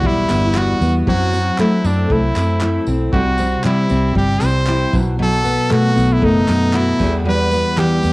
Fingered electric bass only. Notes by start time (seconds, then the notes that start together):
0.04 B1
0.31 G1
0.81 E2
1.07 F#2
1.59 F#3
1.84 F#2
2.10 C2
2.36 F#2
2.87 B1
3.13 C2
3.65 C3
3.90 C2
4.15 G1
4.42 C2
4.93 B1
5.72 B2
5.97 B1
6.22 F#1
6.49 F#2
7.00 E2
7.77 E3
8.04 E2